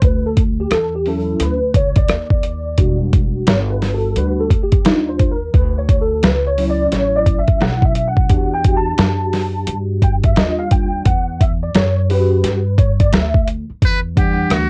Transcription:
0.02 0.68 D2 loud
0.02 0.26 B4 medium
0.02 kick loud
0.02 closed hi-hat medium
0.26 0.41 A4 medium
0.37 kick loud
0.37 closed hi-hat medium
0.60 0.71 G4 medium
0.71 1.37 E2 medium
0.71 0.92 A4 medium
0.71 cross-stick loud
0.71 closed hi-hat medium
0.95 1.07 G4 medium
1.06 1.55 F#3 soft
1.06 1.56 C#4 soft
1.06 1.56 E4 medium
1.06 1.42 A4 medium
1.06 open hi-hat soft
1.40 1.73 D2 medium
1.40 1.77 B4 medium
1.40 cross-stick soft
1.40 closed hi-hat medium
1.74 2.07 C#2 medium
1.74 1.98 C#5 medium
1.74 kick medium
1.74 closed hi-hat medium
1.96 2.96 D5 medium
1.96 kick loud
1.96 closed hi-hat medium
2.09 2.75 D#2 loud
2.09 cross-stick loud
2.09 closed hi-hat medium
2.30 kick medium
2.43 closed hi-hat medium
2.78 3.44 E1 loud
2.78 4.15 G3 soft
2.78 4.16 D4 soft
2.78 4.16 F#4 medium
2.78 kick medium
2.78 closed hi-hat medium
3.13 kick loud
3.13 closed hi-hat medium
3.47 4.13 G1 medium
3.47 3.58 C#5 medium
3.47 snare loud
3.47 closed hi-hat medium
3.70 3.92 B4 medium
3.82 snare soft
3.82 open hi-hat soft
3.94 4.17 A4 medium
4.16 4.82 D2 medium
4.16 4.47 G3 soft
4.16 4.48 D4 soft
4.16 4.48 F#4 medium
4.16 4.40 B4 medium
4.16 closed hi-hat medium
4.40 4.61 A4 medium
4.50 kick medium
4.50 closed hi-hat medium
4.63 4.86 G4 medium
4.72 kick loud
4.72 closed hi-hat medium
4.85 5.51 D#2 medium
4.85 5.34 G3 medium
4.85 5.35 D4 medium
4.85 5.09 D#4 medium
4.85 5.35 F4 medium
4.85 snare loud
4.85 closed hi-hat medium
5.09 5.32 C5 medium
5.19 kick medium
5.19 closed hi-hat medium
5.32 5.53 A#4 medium
5.54 6.20 D2 loud
5.54 5.78 B4 medium
5.54 kick loud
5.54 closed hi-hat medium
5.78 6.01 C#5 medium
5.89 kick loud
5.89 closed hi-hat medium
6.01 6.24 A4 medium
6.23 6.89 C#2 loud
6.23 6.47 B4 medium
6.23 snare loud
6.23 closed hi-hat medium
6.47 6.70 C#5 medium
6.58 8.26 F#3 medium
6.58 8.26 C#4 medium
6.58 8.27 E4 medium
6.58 open hi-hat medium
6.70 6.93 D5 loud
6.92 7.57 A1 medium
6.92 7.16 C#5 medium
6.92 snare soft
6.92 closed hi-hat loud
7.16 7.39 D5 loud
7.26 kick medium
7.26 closed hi-hat medium
7.39 7.62 E5 medium
7.48 kick loud
7.48 closed hi-hat medium
7.61 8.26 B1 medium
7.61 7.83 F#5 loud
7.61 snare loud
7.61 closed hi-hat medium
7.82 8.06 E5 medium
7.82 kick medium
7.95 closed hi-hat medium
8.08 8.55 F#5 medium
8.17 kick medium
8.29 8.95 E2 loud
8.29 10.33 D4 medium
8.29 10.33 F#4 medium
8.29 10.33 G4 medium
8.29 kick loud
8.29 closed hi-hat medium
8.54 8.75 G5 medium
8.64 kick loud
8.64 closed hi-hat medium
8.77 9.76 A5 loud
8.98 9.64 F#2 loud
8.98 snare loud
8.98 closed hi-hat medium
9.33 snare soft
9.33 open hi-hat soft
9.67 10.33 G2 medium
9.67 closed hi-hat loud
10.02 10.13 G5 loud
10.02 kick medium
10.02 closed hi-hat medium
10.24 10.38 E5 medium
10.24 kick loud
10.24 closed hi-hat medium
10.36 11.02 D#2 medium
10.36 11.02 G3 medium
10.36 11.02 D4 medium
10.36 11.03 F4 medium
10.36 10.60 D#5 loud
10.36 snare loud
10.36 closed hi-hat medium
10.59 10.72 F5 medium
10.71 11.07 G5 loud
10.71 kick medium
10.71 closed hi-hat medium
11.05 11.71 E2 loud
11.05 11.41 F#5 medium
11.05 kick loud
11.05 closed hi-hat medium
11.41 11.51 E5 medium
11.41 kick medium
11.41 closed hi-hat medium
11.63 11.74 D5 medium
11.75 12.40 F#2 loud
11.75 12.07 C#5 medium
11.75 snare loud
11.75 closed hi-hat medium
12.10 12.59 C#4 medium
12.10 12.59 F#4 medium
12.10 12.59 G4 medium
12.10 12.81 B4 medium
12.10 open hi-hat soft
12.43 13.09 G2 medium
12.43 snare soft
12.43 closed hi-hat loud
12.78 12.99 C#5 medium
12.78 kick loud
12.78 closed hi-hat medium
13.00 13.13 D5 medium
13.00 kick loud
13.00 closed hi-hat medium
13.13 13.66 D2 medium
13.13 13.45 E5 medium
13.13 snare loud
13.13 closed hi-hat medium
13.34 kick medium
13.47 closed hi-hat medium
13.69 muted upright bass stroke medium
13.82 14.47 E2 medium
13.82 13.99 B4 loud
13.82 kick medium
13.82 closed hi-hat medium
14.15 14.70 E3 medium
14.15 14.70 G3 medium
14.15 14.70 D4 medium
14.15 14.55 G4 medium
14.15 14.70 F#5 medium
14.15 kick loud
14.15 closed hi-hat medium
14.50 14.70 D2 medium
14.50 14.70 F#4 medium
14.50 cross-stick loud
14.50 closed hi-hat medium

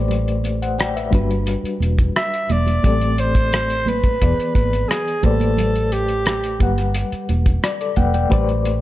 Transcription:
0.00 1.12 A1 medium
0.00 1.10 A3 medium
0.00 1.10 G4 medium
0.00 0.97 B4 medium
0.00 0.10 C5 medium
0.00 0.11 D5 medium
0.08 closed hi-hat medium
0.08 low conga medium
0.28 closed hi-hat soft
0.44 closed hi-hat medium
0.44 muted conga soft
0.62 0.79 C5 soft
0.62 0.78 F#5 medium
0.62 closed hi-hat soft
0.78 0.95 D5 soft
0.78 0.95 G5 medium
0.78 cross-stick medium
0.78 closed hi-hat medium
0.78 muted conga soft
0.96 1.13 B4 soft
0.96 1.29 E5 medium
0.96 closed hi-hat medium
1.11 1.54 G1 medium
1.11 2.80 G3 medium
1.11 2.80 D4 medium
1.11 2.81 F#4 medium
1.11 kick medium
1.11 closed hi-hat medium
1.11 muted conga soft
1.11 high conga medium
1.11 low conga medium
1.15 2.82 B4 medium
1.31 closed hi-hat soft
1.46 closed hi-hat medium
1.46 muted conga soft
1.64 muted fingered electric bass stroke soft
1.64 closed hi-hat soft
1.80 2.08 E1 medium
1.80 closed hi-hat medium
1.80 high conga soft
1.99 kick medium
1.99 closed hi-hat medium
2.16 2.54 E5 medium
2.16 cross-stick loud
2.16 closed hi-hat medium
2.16 muted conga soft
2.34 closed hi-hat soft
2.49 2.77 E1 medium
2.49 3.21 D5 medium
2.49 closed hi-hat soft
2.49 muted conga soft
2.49 high conga medium
2.49 low conga medium
2.67 closed hi-hat soft
2.67 high conga medium
2.83 4.17 A1 medium
2.83 4.18 A3 medium
2.83 4.19 C4 medium
2.83 4.18 G4 medium
2.83 4.19 A4 medium
2.83 4.20 D5 medium
2.83 kick medium
2.83 closed hi-hat medium
2.83 low conga medium
3.01 closed hi-hat soft
3.18 3.90 C5 medium
3.18 closed hi-hat medium
3.35 kick medium
3.35 closed hi-hat soft
3.52 cross-stick loud
3.52 closed hi-hat medium
3.52 muted conga soft
3.70 closed hi-hat medium
3.86 4.55 B4 medium
3.86 closed hi-hat medium
3.86 muted conga soft
3.86 high conga medium
3.86 low conga soft
4.04 kick medium
4.04 closed hi-hat soft
4.20 4.35 E1 loud
4.20 5.24 E3 medium
4.20 5.24 B3 soft
4.20 5.24 G#4 soft
4.20 5.24 D5 medium
4.20 kick medium
4.20 closed hi-hat loud
4.20 muted conga soft
4.40 closed hi-hat soft
4.55 4.83 G#1 medium
4.55 4.90 B4 medium
4.55 kick medium
4.55 closed hi-hat medium
4.55 muted conga soft
4.55 high conga soft
4.73 closed hi-hat medium
4.89 5.26 G#4 medium
4.89 cross-stick medium
4.89 closed hi-hat medium
4.89 muted conga soft
5.08 closed hi-hat soft
5.22 6.60 A1 medium
5.22 6.57 A3 medium
5.22 6.58 G4 medium
5.22 5.94 A4 medium
5.22 6.58 B4 medium
5.22 6.58 C5 soft
5.22 kick medium
5.22 closed hi-hat medium
5.22 high conga medium
5.22 low conga medium
5.26 6.59 D5 medium
5.40 closed hi-hat soft
5.40 high conga medium
5.57 closed hi-hat medium
5.57 muted conga soft
5.57 low conga medium
5.76 closed hi-hat soft
5.92 6.61 G4 medium
5.92 closed hi-hat medium
6.08 closed hi-hat soft
6.26 cross-stick medium
6.26 closed hi-hat medium
6.26 muted conga soft
6.44 closed hi-hat medium
6.59 7.02 G1 medium
6.59 8.28 G3 medium
6.59 8.28 G4 medium
6.59 7.62 B4 medium
6.59 7.62 F#5 medium
6.59 kick medium
6.59 closed hi-hat medium
6.59 muted conga soft
6.59 high conga medium
6.59 low conga medium
6.78 cross-stick soft
6.78 closed hi-hat soft
6.94 closed hi-hat medium
7.12 muted fingered electric bass stroke soft
7.12 closed hi-hat soft
7.29 7.57 E1 medium
7.29 closed hi-hat medium
7.29 muted conga soft
7.29 high conga soft
7.46 kick medium
7.46 closed hi-hat medium
7.63 7.79 D5 medium
7.63 cross-stick medium
7.63 closed hi-hat medium
7.63 muted conga soft
7.81 7.97 A4 soft
7.81 7.97 D5 medium
7.81 closed hi-hat soft
7.96 8.25 E1 medium
7.96 8.14 B4 soft
7.96 8.13 F#5 medium
7.96 8.13 G5 medium
7.96 kick medium
7.96 closed hi-hat medium
7.96 muted conga soft
7.96 high conga medium
7.96 low conga medium
8.14 8.32 D5 soft
8.14 8.47 G5 medium
8.14 closed hi-hat soft
8.14 high conga medium
8.29 8.81 A1 medium
8.29 8.81 A3 medium
8.29 8.81 G4 medium
8.29 8.81 B4 medium
8.29 8.81 C5 medium
8.29 8.81 D5 medium
8.29 kick loud
8.29 closed hi-hat medium
8.29 muted conga soft
8.29 low conga medium
8.49 closed hi-hat soft
8.65 closed hi-hat medium
8.65 muted conga soft

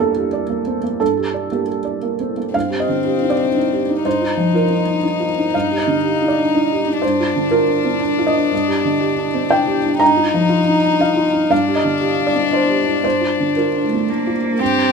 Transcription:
0.00 0.96 G2 soft
0.00 0.26 A#3 soft
0.00 0.16 G4 soft
0.00 0.97 A4 medium
0.00 1.03 A#4 medium
0.00 0.33 D5 soft
0.16 0.43 G4 soft
0.33 0.60 D5 soft
0.49 0.77 A#3 soft
0.67 0.84 C4 soft
0.83 1.01 A#3 soft
1.00 2.51 G2 soft
1.00 1.48 A4 medium
1.17 1.45 G4 soft
1.34 1.62 D5 soft
1.52 1.80 A#3 soft
1.52 1.66 G4 soft
1.68 1.96 G4 soft
1.85 2.13 D5 soft
2.02 2.30 A#3 soft
2.20 2.38 C4 soft
2.37 2.54 A#3 soft
2.54 4.01 G2 soft
2.54 4.02 C4 soft
2.54 2.78 F5 medium
2.70 2.98 G4 soft
2.80 3.27 D#5 soft
2.88 3.15 D3 soft
3.05 3.32 G4 soft
3.22 3.49 D#4 soft
3.30 4.01 D5 medium
3.39 3.55 D4 soft
3.55 3.82 D#4 soft
3.73 3.99 G4 soft
3.89 4.05 D#4 soft
4.04 5.50 G2 soft
4.04 6.98 D#4 soft
4.04 4.52 C5 medium
4.21 4.48 F4 soft
4.37 4.64 F3 soft
4.54 4.81 F4 soft
4.54 5.25 A#4 soft
4.70 4.97 D#4 soft
4.87 5.04 D4 soft
5.03 5.30 D#4 soft
5.20 5.47 F4 soft
5.38 5.54 D#4 soft
5.54 6.98 G2 soft
5.54 5.77 F5 medium
5.71 5.97 G4 soft
5.78 6.25 D#5 soft
5.87 6.14 D3 soft
6.04 6.30 G4 soft
6.22 6.48 D#4 soft
6.28 6.98 D5 medium
6.38 6.54 D4 soft
6.55 6.80 D#4 soft
6.72 6.97 G4 soft
6.88 7.03 D#4 soft
7.02 8.49 G2 soft
7.02 9.97 D4 soft
7.02 7.47 C5 medium
7.20 7.45 F4 soft
7.36 7.62 D3 soft
7.51 7.78 F4 soft
7.51 8.22 A#4 medium
7.68 7.94 D4 soft
7.85 8.01 C4 soft
8.01 8.28 D4 soft
8.19 8.45 F4 soft
8.27 9.47 D#5 medium
8.36 8.52 D4 soft
8.52 9.97 G2 soft
8.68 8.94 G4 soft
8.85 9.11 D3 soft
9.01 9.27 G4 soft
9.18 9.44 D4 soft
9.34 9.51 C4 soft
9.51 9.78 D4 soft
9.51 9.97 G5 medium
9.67 9.94 G4 soft
9.84 10.01 D4 soft
10.00 11.47 G2 soft
10.00 11.53 D#4 medium
10.00 10.96 A#5 medium
10.17 10.44 F4 soft
10.34 10.61 F3 soft
10.49 10.77 F4 soft
10.67 10.94 D#4 soft
10.84 11.01 D4 soft
11.00 11.27 D#4 soft
11.00 11.24 F5 medium
11.16 11.44 F4 soft
11.34 11.51 D#4 soft
11.50 13.00 G2 soft
11.50 14.41 D4 soft
11.50 11.74 F5 medium
11.68 11.95 G4 soft
11.75 12.23 D#5 soft
11.85 12.11 D3 soft
12.01 12.28 G4 soft
12.18 12.45 D4 soft
12.27 12.50 D5 medium
12.35 12.52 C4 soft
12.52 12.80 D4 soft
12.52 13.01 C5 medium
12.69 12.97 G4 soft
12.86 13.04 D4 soft
13.04 14.56 G2 soft
13.04 13.53 C5 medium
13.21 13.50 F4 soft
13.40 13.68 D3 soft
13.56 13.86 F4 soft
13.56 14.31 A#4 soft
13.76 14.03 D4 soft
13.84 14.11 A3 soft
13.93 14.10 C4 soft
14.09 14.61 A#3 soft
14.09 14.37 D4 soft
14.27 14.54 F4 soft
14.45 14.61 D4 soft
14.59 14.92 G2 soft
14.59 14.92 C4 medium
14.59 14.92 G4 soft
14.79 14.92 G4 soft

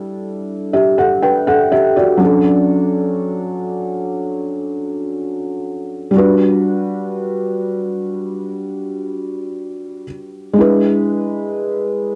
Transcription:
0.00 2.15 G3 medium
0.00 2.16 D4 medium
0.00 2.17 E4 medium
0.00 0.71 A4 medium
0.73 0.97 G4 medium
0.73 0.96 E5 medium
0.98 1.21 A4 medium
0.98 1.21 F#5 medium
1.22 1.46 B4 medium
1.22 1.45 G5 medium
1.47 1.71 A4 medium
1.47 1.70 F#5 medium
1.72 1.95 G4 medium
1.72 1.95 E5 medium
1.96 2.43 F#4 medium
1.96 2.43 D5 medium
2.17 6.08 F#3 medium
2.17 6.09 C#4 medium
2.22 6.11 D4 medium
2.22 6.12 A4 medium
6.11 10.02 G3 medium
6.11 10.03 D4 medium
6.16 10.04 F#4 medium
6.16 10.05 B4 medium
10.53 12.15 G#3 medium
10.53 12.15 D4 medium
10.58 12.15 E4 medium
10.58 12.15 B4 medium

